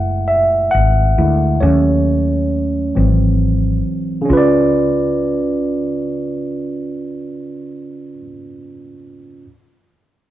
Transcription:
0, 0, Header, 1, 3, 480
1, 0, Start_track
1, 0, Tempo, 888889
1, 867, Time_signature, 6, 3, 24, 8
1, 5565, End_track
2, 0, Start_track
2, 0, Title_t, "Tine electric piano"
2, 0, Program_c, 0, 4
2, 0, Control_c, 0, 64, 127
2, 0, Note_on_c, 0, 56, 55
2, 0, Note_on_c, 0, 57, 50
2, 0, Note_on_c, 0, 64, 63
2, 0, Note_on_c, 0, 76, 99
2, 0, Note_on_c, 0, 78, 108
2, 124, Note_off_c, 0, 78, 0
2, 150, Note_off_c, 0, 76, 0
2, 150, Note_on_c, 0, 76, 94
2, 384, Note_on_c, 0, 78, 118
2, 395, Note_off_c, 0, 76, 0
2, 634, Note_off_c, 0, 56, 0
2, 634, Note_on_c, 0, 56, 53
2, 637, Note_off_c, 0, 57, 0
2, 637, Note_on_c, 0, 57, 48
2, 641, Note_off_c, 0, 64, 0
2, 641, Note_on_c, 0, 64, 60
2, 849, Note_off_c, 0, 56, 0
2, 850, Note_off_c, 0, 57, 0
2, 852, Note_off_c, 0, 64, 0
2, 867, Note_on_c, 0, 73, 90
2, 870, Note_on_c, 0, 54, 57
2, 873, Note_on_c, 0, 57, 56
2, 874, Control_c, 0, 64, 0
2, 877, Note_on_c, 0, 61, 70
2, 880, Note_off_c, 0, 78, 0
2, 977, Control_c, 0, 64, 127
2, 1565, Note_off_c, 0, 73, 0
2, 1567, Note_off_c, 0, 54, 0
2, 1568, Note_off_c, 0, 57, 0
2, 1570, Note_off_c, 0, 61, 0
2, 1593, Control_c, 0, 64, 0
2, 1595, Note_on_c, 0, 52, 60
2, 1595, Note_on_c, 0, 54, 58
2, 1600, Note_on_c, 0, 60, 68
2, 1699, Control_c, 0, 64, 127
2, 1910, Note_off_c, 0, 52, 0
2, 1910, Note_off_c, 0, 54, 0
2, 1913, Note_off_c, 0, 60, 0
2, 2276, Note_on_c, 0, 49, 83
2, 2297, Note_on_c, 0, 61, 77
2, 2314, Control_c, 0, 64, 0
2, 2318, Note_on_c, 0, 65, 79
2, 2339, Note_on_c, 0, 71, 82
2, 2361, Note_on_c, 0, 74, 90
2, 2419, Control_c, 0, 64, 127
2, 4391, Note_off_c, 0, 49, 0
2, 4412, Note_off_c, 0, 61, 0
2, 4433, Note_off_c, 0, 65, 0
2, 4454, Note_off_c, 0, 71, 0
2, 4476, Note_off_c, 0, 74, 0
2, 5104, Control_c, 0, 64, 0
2, 5565, End_track
3, 0, Start_track
3, 0, Title_t, "Fretless electric bass"
3, 0, Program_c, 1, 35
3, 0, Note_on_c, 1, 30, 114
3, 371, Note_off_c, 1, 30, 0
3, 402, Note_on_c, 1, 32, 92
3, 613, Note_off_c, 1, 32, 0
3, 638, Note_on_c, 1, 38, 95
3, 851, Note_off_c, 1, 38, 0
3, 877, Note_on_c, 1, 39, 114
3, 1570, Note_off_c, 1, 39, 0
3, 1602, Note_on_c, 1, 32, 90
3, 2053, Note_off_c, 1, 32, 0
3, 2321, Note_on_c, 1, 37, 106
3, 4436, Note_off_c, 1, 37, 0
3, 5565, End_track
0, 0, End_of_file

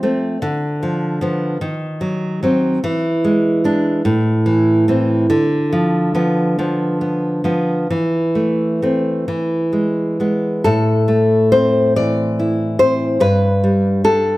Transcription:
0, 0, Header, 1, 2, 480
1, 0, Start_track
1, 0, Key_signature, 0, "minor"
1, 0, Tempo, 802139
1, 236, Time_signature, 6, 3, 24, 8
1, 1681, Tempo, 827586
1, 3121, Tempo, 855920
1, 4081, Tempo, 916031
1, 6001, Tempo, 874636
1, 6481, Tempo, 834492
1, 8110, End_track
2, 0, Start_track
2, 0, Title_t, "Nylon-string guitar"
2, 0, Program_c, 0, 24
2, 0, Note_on_c, 0, 53, 68
2, 17, Note_on_c, 0, 57, 49
2, 20, Note_on_c, 0, 60, 52
2, 214, Note_off_c, 0, 53, 0
2, 222, Note_off_c, 0, 57, 0
2, 223, Note_off_c, 0, 60, 0
2, 251, Note_on_c, 0, 50, 75
2, 495, Note_on_c, 0, 53, 55
2, 718, Note_off_c, 0, 53, 0
2, 726, Note_on_c, 0, 53, 50
2, 732, Note_on_c, 0, 59, 55
2, 937, Note_off_c, 0, 53, 0
2, 939, Note_off_c, 0, 50, 0
2, 940, Note_off_c, 0, 59, 0
2, 965, Note_on_c, 0, 51, 59
2, 1202, Note_on_c, 0, 54, 59
2, 1445, Note_off_c, 0, 54, 0
2, 1452, Note_on_c, 0, 54, 50
2, 1457, Note_on_c, 0, 60, 58
2, 1665, Note_off_c, 0, 51, 0
2, 1665, Note_off_c, 0, 54, 0
2, 1668, Note_off_c, 0, 60, 0
2, 1697, Note_on_c, 0, 52, 75
2, 1934, Note_on_c, 0, 56, 61
2, 2159, Note_off_c, 0, 56, 0
2, 2165, Note_on_c, 0, 56, 54
2, 2169, Note_on_c, 0, 62, 63
2, 2375, Note_off_c, 0, 56, 0
2, 2376, Note_off_c, 0, 62, 0
2, 2381, Note_off_c, 0, 52, 0
2, 2400, Note_on_c, 0, 45, 75
2, 2638, Note_on_c, 0, 52, 58
2, 2875, Note_off_c, 0, 52, 0
2, 2882, Note_on_c, 0, 52, 55
2, 2888, Note_on_c, 0, 60, 57
2, 3101, Note_off_c, 0, 52, 0
2, 3102, Note_off_c, 0, 45, 0
2, 3104, Note_off_c, 0, 60, 0
2, 3124, Note_on_c, 0, 50, 75
2, 3364, Note_on_c, 0, 53, 61
2, 3593, Note_off_c, 0, 53, 0
2, 3600, Note_on_c, 0, 53, 57
2, 3603, Note_on_c, 0, 59, 56
2, 3840, Note_off_c, 0, 53, 0
2, 3843, Note_off_c, 0, 59, 0
2, 3847, Note_on_c, 0, 53, 50
2, 3849, Note_on_c, 0, 59, 52
2, 4078, Note_off_c, 0, 59, 0
2, 4085, Note_on_c, 0, 59, 45
2, 4304, Note_off_c, 0, 53, 0
2, 4308, Note_off_c, 0, 59, 0
2, 4310, Note_on_c, 0, 53, 48
2, 4314, Note_on_c, 0, 59, 53
2, 4531, Note_off_c, 0, 53, 0
2, 4533, Note_off_c, 0, 50, 0
2, 4533, Note_off_c, 0, 59, 0
2, 4553, Note_on_c, 0, 52, 63
2, 4788, Note_on_c, 0, 57, 48
2, 5029, Note_off_c, 0, 57, 0
2, 5035, Note_on_c, 0, 57, 43
2, 5039, Note_on_c, 0, 60, 48
2, 5255, Note_off_c, 0, 57, 0
2, 5257, Note_off_c, 0, 60, 0
2, 5259, Note_off_c, 0, 52, 0
2, 5273, Note_on_c, 0, 52, 57
2, 5507, Note_on_c, 0, 56, 47
2, 5749, Note_off_c, 0, 56, 0
2, 5755, Note_on_c, 0, 56, 39
2, 5759, Note_on_c, 0, 59, 44
2, 5976, Note_off_c, 0, 52, 0
2, 5976, Note_off_c, 0, 56, 0
2, 5976, Note_off_c, 0, 59, 0
2, 5988, Note_on_c, 0, 69, 93
2, 5994, Note_on_c, 0, 45, 68
2, 6227, Note_on_c, 0, 57, 48
2, 6454, Note_off_c, 0, 69, 0
2, 6468, Note_on_c, 0, 72, 89
2, 6471, Note_on_c, 0, 60, 50
2, 6712, Note_off_c, 0, 72, 0
2, 6722, Note_on_c, 0, 52, 46
2, 6723, Note_on_c, 0, 74, 88
2, 6967, Note_off_c, 0, 57, 0
2, 6971, Note_on_c, 0, 64, 50
2, 7191, Note_off_c, 0, 74, 0
2, 7192, Note_off_c, 0, 60, 0
2, 7198, Note_on_c, 0, 60, 50
2, 7200, Note_on_c, 0, 72, 90
2, 7425, Note_off_c, 0, 45, 0
2, 7434, Note_off_c, 0, 72, 0
2, 7436, Note_on_c, 0, 43, 66
2, 7439, Note_on_c, 0, 71, 96
2, 7444, Note_off_c, 0, 60, 0
2, 7449, Note_off_c, 0, 52, 0
2, 7450, Note_off_c, 0, 64, 0
2, 7685, Note_on_c, 0, 55, 53
2, 7898, Note_off_c, 0, 71, 0
2, 7913, Note_off_c, 0, 55, 0
2, 7919, Note_on_c, 0, 55, 51
2, 7921, Note_on_c, 0, 69, 86
2, 7923, Note_on_c, 0, 62, 55
2, 8110, Note_off_c, 0, 43, 0
2, 8110, Note_off_c, 0, 55, 0
2, 8110, Note_off_c, 0, 62, 0
2, 8110, Note_off_c, 0, 69, 0
2, 8110, End_track
0, 0, End_of_file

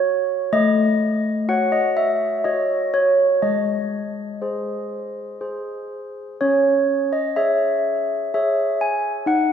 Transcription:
0, 0, Header, 1, 2, 480
1, 0, Start_track
1, 0, Key_signature, 4, "minor"
1, 0, Tempo, 960000
1, 260, Time_signature, 3, 2, 24, 8
1, 1221, Tempo, 983607
1, 3621, Tempo, 953895
1, 4711, End_track
2, 0, Start_track
2, 0, Title_t, "Handbells"
2, 0, Program_c, 0, 14
2, 0, Note_on_c, 0, 66, 44
2, 0, Note_on_c, 0, 73, 75
2, 241, Note_off_c, 0, 66, 0
2, 242, Note_off_c, 0, 73, 0
2, 263, Note_on_c, 0, 57, 69
2, 264, Note_on_c, 0, 75, 95
2, 722, Note_off_c, 0, 75, 0
2, 726, Note_off_c, 0, 57, 0
2, 742, Note_on_c, 0, 66, 48
2, 744, Note_on_c, 0, 78, 77
2, 747, Note_on_c, 0, 73, 47
2, 860, Note_on_c, 0, 75, 74
2, 861, Note_off_c, 0, 78, 0
2, 980, Note_off_c, 0, 75, 0
2, 984, Note_on_c, 0, 76, 75
2, 1202, Note_off_c, 0, 66, 0
2, 1204, Note_off_c, 0, 73, 0
2, 1213, Note_off_c, 0, 76, 0
2, 1222, Note_on_c, 0, 75, 74
2, 1225, Note_on_c, 0, 66, 43
2, 1226, Note_on_c, 0, 73, 45
2, 1449, Note_off_c, 0, 75, 0
2, 1457, Note_off_c, 0, 73, 0
2, 1463, Note_on_c, 0, 73, 72
2, 1680, Note_off_c, 0, 66, 0
2, 1690, Note_off_c, 0, 73, 0
2, 1700, Note_on_c, 0, 56, 52
2, 1700, Note_on_c, 0, 75, 64
2, 2167, Note_off_c, 0, 56, 0
2, 2184, Note_on_c, 0, 72, 40
2, 2186, Note_on_c, 0, 68, 35
2, 2644, Note_off_c, 0, 72, 0
2, 2645, Note_off_c, 0, 68, 0
2, 2669, Note_on_c, 0, 68, 34
2, 2669, Note_on_c, 0, 72, 34
2, 2885, Note_off_c, 0, 75, 0
2, 3129, Note_off_c, 0, 68, 0
2, 3129, Note_off_c, 0, 72, 0
2, 3156, Note_on_c, 0, 73, 74
2, 3159, Note_on_c, 0, 61, 50
2, 3493, Note_off_c, 0, 73, 0
2, 3507, Note_on_c, 0, 75, 63
2, 3612, Note_off_c, 0, 61, 0
2, 3622, Note_off_c, 0, 75, 0
2, 3623, Note_on_c, 0, 76, 69
2, 3625, Note_on_c, 0, 73, 44
2, 3626, Note_on_c, 0, 68, 41
2, 4085, Note_off_c, 0, 68, 0
2, 4085, Note_off_c, 0, 73, 0
2, 4085, Note_off_c, 0, 76, 0
2, 4115, Note_on_c, 0, 68, 38
2, 4115, Note_on_c, 0, 76, 66
2, 4118, Note_on_c, 0, 73, 40
2, 4339, Note_off_c, 0, 76, 0
2, 4352, Note_on_c, 0, 80, 73
2, 4567, Note_off_c, 0, 68, 0
2, 4568, Note_off_c, 0, 73, 0
2, 4576, Note_off_c, 0, 80, 0
2, 4578, Note_on_c, 0, 63, 56
2, 4584, Note_on_c, 0, 78, 77
2, 4711, Note_off_c, 0, 63, 0
2, 4711, Note_off_c, 0, 78, 0
2, 4711, End_track
0, 0, End_of_file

